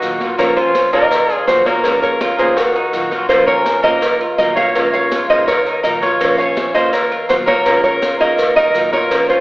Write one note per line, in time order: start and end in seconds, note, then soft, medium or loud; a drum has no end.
0.00 0.87 A#1 loud
0.00 0.20 D#3 medium
0.00 0.20 F#3 medium
0.00 0.20 A#3 medium
0.00 0.20 D#4 medium
0.00 0.19 F4 medium
0.00 0.37 F#4 medium
0.00 0.38 A#4 medium
0.00 cowbell medium
0.00 high conga soft
0.00 maracas medium
0.20 0.38 F#3 soft
0.20 0.37 A#3 soft
0.20 0.38 F4 soft
0.20 0.38 F4 medium
0.20 cowbell medium
0.20 high conga medium
0.20 maracas soft
0.38 0.74 F3 medium
0.38 0.73 A#3 medium
0.38 0.56 A#3 medium
0.38 0.74 C#4 medium
0.38 0.75 F4 medium
0.38 0.55 A#4 medium
0.38 0.74 C5 medium
0.38 0.56 C#5 medium
0.38 cowbell loud
0.38 maracas medium
0.56 0.92 C#4 medium
0.56 0.90 F4 medium
0.56 0.91 C5 loud
0.56 high conga soft
0.56 maracas soft
0.74 0.92 A#3 medium
0.74 0.93 C#4 medium
0.74 0.92 F4 medium
0.74 0.92 C5 medium
0.74 cowbell medium
0.74 high conga loud
0.74 maracas medium
0.93 1.44 D#2 loud
0.93 1.28 A#3 loud
0.93 1.11 A#3 medium
0.93 1.11 C#4 medium
0.93 1.11 F4 medium
0.93 1.33 A#4 medium
0.93 1.11 C5 medium
0.93 1.47 D#5 loud
0.93 cowbell medium
0.93 high conga soft
0.93 maracas soft
1.11 muted steel-string acoustic guitar stroke medium
1.11 cowbell loud
1.11 high conga soft
1.11 maracas medium
1.30 1.65 F4 medium
1.30 1.44 G#4 medium
1.30 high conga soft
1.30 maracas soft
1.47 2.33 A#1 loud
1.47 1.65 D#3 medium
1.47 1.65 F#3 medium
1.47 1.65 A#3 medium
1.47 1.64 F4 medium
1.47 1.67 F#4 medium
1.47 1.66 C5 loud
1.47 cowbell medium
1.47 high conga medium
1.47 maracas medium
1.65 1.83 F#3 soft
1.65 1.84 A#3 soft
1.65 1.83 A#3 medium
1.65 1.83 F4 soft
1.65 2.01 A#4 medium
1.65 2.01 C#5 loud
1.65 cowbell medium
1.65 high conga medium
1.65 maracas soft
1.84 2.19 F3 medium
1.84 2.20 G#3 medium
1.84 2.20 A#3 medium
1.84 2.20 C#4 medium
1.84 2.20 F4 medium
1.84 cowbell loud
1.84 maracas medium
2.02 2.36 A#4 medium
2.02 2.39 C#5 loud
2.02 high conga soft
2.02 maracas soft
2.20 2.38 F3 soft
2.20 2.38 G#3 medium
2.20 2.38 C#4 medium
2.20 2.39 F4 medium
2.20 2.38 F4 medium
2.20 cowbell medium
2.20 high conga loud
2.20 maracas medium
2.38 2.89 D#2 loud
2.38 2.57 G#3 medium
2.38 2.74 A#3 medium
2.38 2.57 C#4 medium
2.38 2.56 F4 medium
2.38 2.55 G#4 medium
2.38 2.58 C5 medium
2.38 cowbell medium
2.38 high conga soft
2.38 maracas soft
2.56 3.25 F#4 medium
2.56 3.26 A#4 loud
2.56 muted steel-string acoustic guitar stroke medium
2.56 cowbell loud
2.56 high conga soft
2.56 maracas medium
2.75 3.11 D#4 medium
2.75 high conga soft
2.75 maracas soft
2.93 3.78 A#1 loud
2.93 3.11 D#3 medium
2.93 3.11 F#3 medium
2.93 3.11 A#3 medium
2.93 3.10 F4 medium
2.93 cowbell medium
2.93 high conga soft
2.93 maracas medium
3.11 3.30 F#3 soft
3.11 3.29 A#3 soft
3.11 3.30 F4 medium
3.11 cowbell medium
3.11 high conga medium
3.11 maracas soft
3.29 3.65 F3 medium
3.29 3.48 A#3 medium
3.29 3.65 A#3 medium
3.29 3.66 C#4 medium
3.29 3.46 F4 medium
3.29 3.66 F4 medium
3.29 3.47 C5 loud
3.29 3.66 C5 medium
3.29 cowbell loud
3.29 high conga soft
3.29 maracas medium
3.46 3.83 C#4 medium
3.46 3.81 A#4 medium
3.46 3.83 C#5 loud
3.46 high conga soft
3.46 maracas soft
3.66 3.84 A#3 medium
3.66 3.84 C#4 medium
3.66 3.84 F4 medium
3.66 3.84 C5 medium
3.66 cowbell medium
3.66 high conga loud
3.66 maracas medium
3.83 4.35 D#2 medium
3.83 4.20 A#3 medium
3.83 4.02 A#3 medium
3.83 4.03 C#4 medium
3.83 4.02 F4 medium
3.83 4.22 A#4 medium
3.83 4.02 C5 medium
3.83 4.37 D#5 loud
3.83 cowbell medium
3.83 high conga soft
3.83 maracas soft
4.02 muted steel-string acoustic guitar stroke medium
4.02 cowbell loud
4.02 high conga soft
4.02 maracas medium
4.20 4.56 F4 medium
4.20 high conga soft
4.20 maracas soft
4.37 5.24 A#1 loud
4.37 4.56 D#3 medium
4.37 4.57 F#3 medium
4.37 4.57 A#3 medium
4.37 4.56 F4 medium
4.37 4.55 A#4 medium
4.37 4.56 D#5 loud
4.37 cowbell medium
4.37 high conga medium
4.37 maracas medium
4.55 4.75 F#3 soft
4.55 4.74 A#3 medium
4.55 4.75 A#3 soft
4.55 4.75 F4 soft
4.55 4.90 C#5 medium
4.55 4.92 F5 loud
4.55 cowbell medium
4.55 high conga medium
4.55 maracas soft
4.75 5.11 F3 medium
4.75 5.11 G#3 medium
4.75 5.11 A#3 medium
4.75 5.11 C#4 medium
4.75 5.12 F4 medium
4.75 cowbell loud
4.75 high conga soft
4.75 maracas medium
4.92 5.26 C#5 medium
4.92 5.27 F5 loud
4.92 high conga soft
4.92 maracas soft
5.12 5.29 F3 medium
5.12 5.30 G#3 medium
5.12 5.29 C#4 medium
5.12 5.29 F4 medium
5.12 5.28 F4 medium
5.12 cowbell medium
5.12 high conga loud
5.12 maracas medium
5.29 5.80 D#2 medium
5.29 5.48 G#3 medium
5.29 5.65 A#3 medium
5.29 5.48 C#4 medium
5.29 5.47 F4 medium
5.29 5.46 C5 medium
5.29 5.47 D#5 loud
5.29 cowbell medium
5.29 high conga soft
5.29 maracas soft
5.47 5.81 A#4 medium
5.47 5.82 C#5 loud
5.47 muted steel-string acoustic guitar stroke medium
5.47 cowbell loud
5.47 high conga soft
5.47 maracas medium
5.66 6.02 D#4 medium
5.66 high conga soft
5.66 maracas soft
5.83 6.69 A#1 loud
5.83 6.02 D#3 medium
5.83 6.02 F#3 medium
5.83 6.02 A#3 medium
5.83 6.01 F4 medium
5.83 5.99 A#4 medium
5.83 5.89 D#5 loud
5.83 cowbell medium
5.83 high conga soft
5.83 maracas medium
6.01 6.20 F#3 soft
6.01 6.20 A#3 soft
6.01 6.20 F4 medium
6.01 6.20 F4 soft
6.01 6.38 C#5 medium
6.01 6.37 F5 loud
6.01 cowbell medium
6.01 high conga medium
6.01 maracas soft
6.20 6.56 F3 medium
6.20 6.38 A#3 medium
6.20 6.55 A#3 medium
6.20 6.56 C#4 medium
6.20 6.57 F4 medium
6.20 6.57 C5 medium
6.20 cowbell loud
6.20 high conga soft
6.20 maracas medium
6.38 6.74 C#4 medium
6.38 6.72 C#5 loud
6.38 6.74 F5 loud
6.38 high conga soft
6.38 maracas soft
6.57 6.74 A#3 medium
6.57 6.75 C#4 medium
6.57 6.74 F4 medium
6.57 6.73 C5 medium
6.57 cowbell medium
6.57 high conga loud
6.57 maracas medium
6.74 7.26 D#2 medium
6.74 7.10 A#3 medium
6.74 6.93 A#3 medium
6.74 6.93 C#4 medium
6.74 6.93 F4 medium
6.74 6.94 C5 medium
6.74 6.92 C5 medium
6.74 6.93 D#5 loud
6.74 cowbell medium
6.74 high conga soft
6.74 maracas soft
6.92 7.28 A#4 medium
6.92 7.29 C#5 loud
6.92 muted steel-string acoustic guitar stroke medium
6.92 cowbell loud
6.92 high conga soft
6.92 maracas medium
7.11 7.47 F4 medium
7.11 high conga soft
7.11 maracas soft
7.29 8.15 A#1 loud
7.29 7.47 D#3 medium
7.29 7.47 F#3 medium
7.29 7.48 A#3 medium
7.29 7.47 F4 medium
7.29 7.37 F#4 medium
7.29 7.34 C5 loud
7.29 cowbell medium
7.29 high conga medium
7.29 maracas medium
7.46 7.65 F#3 soft
7.46 7.65 A#3 medium
7.46 7.66 A#3 soft
7.46 7.65 F4 soft
7.46 7.81 A#4 medium
7.46 7.83 C#5 loud
7.46 cowbell medium
7.46 high conga medium
7.46 maracas soft
7.66 8.01 F3 medium
7.66 8.01 G#3 medium
7.66 8.01 A#3 medium
7.66 8.02 C#4 medium
7.66 8.02 F4 medium
7.66 cowbell loud
7.66 high conga soft
7.66 maracas medium
7.83 8.17 A#4 medium
7.83 8.20 C#5 medium
7.83 high conga soft
7.83 maracas soft
8.02 8.20 F3 medium
8.02 8.20 G#3 medium
8.02 8.20 C#4 medium
8.02 8.20 F4 medium
8.02 8.19 F4 medium
8.02 cowbell medium
8.02 high conga loud
8.02 maracas medium
8.19 8.71 D#2 loud
8.19 8.39 G#3 medium
8.19 8.56 A#3 medium
8.19 8.38 C#4 medium
8.19 8.38 F4 medium
8.19 8.54 A#4 medium
8.19 8.54 D#5 loud
8.19 cowbell medium
8.19 high conga soft
8.19 maracas soft
8.38 muted steel-string acoustic guitar stroke medium
8.38 cowbell loud
8.38 high conga soft
8.38 maracas medium
8.56 8.92 D#4 medium
8.56 8.90 A#4 medium
8.56 8.93 D#5 loud
8.56 high conga soft
8.56 maracas soft
8.74 9.40 A#1 loud
8.74 8.92 D#3 medium
8.74 8.93 F#3 medium
8.74 8.93 A#3 medium
8.74 8.92 F4 medium
8.74 cowbell medium
8.74 high conga soft
8.74 maracas medium
8.92 9.11 F#3 soft
8.92 9.10 A#3 soft
8.92 9.11 F4 medium
8.92 9.27 A#4 medium
8.92 9.29 C#5 loud
8.92 cowbell medium
8.92 high conga medium
8.92 maracas soft
9.11 9.40 F3 medium
9.11 9.40 A#3 medium
9.11 9.29 A#3 medium
9.11 9.40 C#4 medium
9.11 9.40 F4 medium
9.11 9.40 C5 medium
9.11 cowbell loud
9.11 high conga soft
9.11 maracas medium
9.29 9.40 C#4 medium
9.29 9.40 F4 medium
9.29 9.40 C5 medium
9.29 high conga soft
9.29 maracas soft